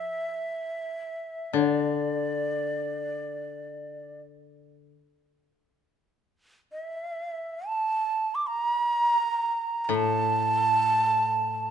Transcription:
0.00 1.55 E5 medium
1.53 4.91 D3 soft
1.53 1.68 C#5 medium
1.68 4.21 D5 medium
6.72 7.68 E5 medium
7.67 8.36 A5 medium
8.35 8.49 D6 medium
8.47 9.85 A#5 medium
9.85 9.96 A#5 medium
9.89 11.71 A2 soft
9.95 11.71 A5 loud

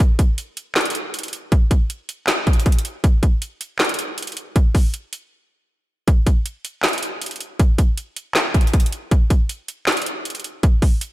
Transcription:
0.19 kick medium
0.19 closed hi-hat medium
0.38 closed hi-hat medium
0.57 closed hi-hat medium
0.75 snare loud
0.75 clap medium
0.75 closed hi-hat soft
0.81 closed hi-hat medium
0.85 closed hi-hat medium
0.90 closed hi-hat medium
0.95 closed hi-hat medium
1.14 closed hi-hat medium
1.19 closed hi-hat medium
1.23 closed hi-hat medium
1.28 closed hi-hat soft
1.33 closed hi-hat medium
1.52 kick loud
1.52 closed hi-hat medium
1.71 kick medium
1.71 closed hi-hat medium
1.90 closed hi-hat medium
2.09 closed hi-hat medium
2.27 snare loud
2.27 clap medium
2.27 closed hi-hat medium
2.47 kick medium
2.47 closed hi-hat medium
2.53 closed hi-hat medium
2.60 closed hi-hat medium
2.66 kick medium
2.66 closed hi-hat medium
2.72 closed hi-hat medium
2.79 closed hi-hat medium
2.85 closed hi-hat medium
3.04 kick loud
3.04 closed hi-hat medium
3.23 kick medium
3.23 closed hi-hat medium
3.42 closed hi-hat medium
3.61 closed hi-hat medium
3.79 snare loud
3.79 clap medium
3.79 closed hi-hat soft
3.84 closed hi-hat medium
3.89 closed hi-hat medium
3.94 closed hi-hat medium
3.99 closed hi-hat medium
4.18 closed hi-hat medium
4.22 closed hi-hat medium
4.27 closed hi-hat medium
4.32 closed hi-hat soft
4.37 closed hi-hat medium
4.56 kick loud
4.56 closed hi-hat medium
4.75 kick medium
4.75 open hi-hat medium
4.94 closed hi-hat medium
5.13 closed hi-hat medium
6.08 kick loud
6.08 closed hi-hat medium
6.27 kick medium
6.27 closed hi-hat medium
6.46 closed hi-hat medium
6.65 closed hi-hat medium
6.83 snare loud
6.83 clap medium
6.83 closed hi-hat soft
6.88 closed hi-hat medium
6.93 closed hi-hat medium
6.98 closed hi-hat medium
7.03 closed hi-hat medium
7.22 closed hi-hat medium
7.26 closed hi-hat medium
7.31 closed hi-hat medium
7.36 closed hi-hat soft
7.40 closed hi-hat medium
7.59 kick loud
7.59 closed hi-hat medium
7.78 kick medium
7.78 closed hi-hat medium
7.97 closed hi-hat medium
8.16 closed hi-hat medium
8.35 snare loud
8.35 clap medium
8.35 closed hi-hat medium
8.54 kick loud
8.54 closed hi-hat medium
8.61 closed hi-hat medium
8.67 closed hi-hat medium
8.73 kick medium
8.73 closed hi-hat medium
8.80 closed hi-hat medium
8.86 closed hi-hat medium
8.92 closed hi-hat medium
9.11 kick loud
9.11 closed hi-hat medium
9.30 kick medium
9.30 closed hi-hat medium
9.49 closed hi-hat medium
9.68 closed hi-hat medium
9.87 snare loud
9.87 clap medium
9.87 closed hi-hat soft
9.92 closed hi-hat medium
9.97 closed hi-hat medium
10.02 closed hi-hat medium
10.06 closed hi-hat medium
10.25 closed hi-hat medium
10.30 closed hi-hat medium
10.35 closed hi-hat medium
10.40 closed hi-hat soft
10.44 closed hi-hat medium
10.63 kick loud
10.63 closed hi-hat medium
10.82 kick medium
10.82 open hi-hat medium
11.01 closed hi-hat medium

